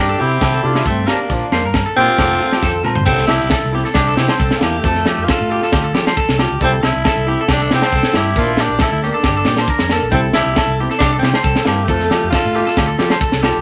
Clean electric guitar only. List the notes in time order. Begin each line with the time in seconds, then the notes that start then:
0.09 A4
0.19 G4
0.42 G4
0.53 A4
0.76 E4
0.86 A4
1.07 A#4
1.30 muted clean electric guitar stroke
1.52 C5
1.66 A#4
1.86 A4
1.98 G4
2.19 G4
2.31 A4
2.53 G4
2.63 A4
2.84 A#4
2.95 C5
3.06 A4
3.28 G4
3.52 A4
3.75 G4
3.85 A4
3.96 G4
4.08 A4
4.19 G4
4.30 C5
4.40 A4
4.63 G4
4.85 A4
5.08 G4
5.30 A4
5.52 G4
5.63 A4
5.73 G4
5.84 A4
5.94 G4
6.07 C5
6.17 A4
6.39 G4
6.62 A4
6.83 muted clean electric guitar stroke
7.06 A4
7.28 G4
7.41 A4
7.51 G4
7.62 A4
7.74 G4
7.85 C5
7.96 A4
8.17 G4
8.39 F4
8.60 G4
8.83 A4
9.04 G4
9.14 A4
9.26 G4
9.37 A4
9.48 G4
9.60 C5
9.70 A#4
9.93 A4
10.15 A4
10.38 G4
10.58 A4
10.80 G4
10.91 A4
11.02 G4
11.13 A4
11.25 G4
11.36 C5
11.44 A4
11.67 G4
11.89 A4
12.11 G4
12.34 A4
12.55 G4
12.67 A4
12.78 G4
12.88 A4
12.99 G4
13.11 C5
13.21 A4
13.43 G4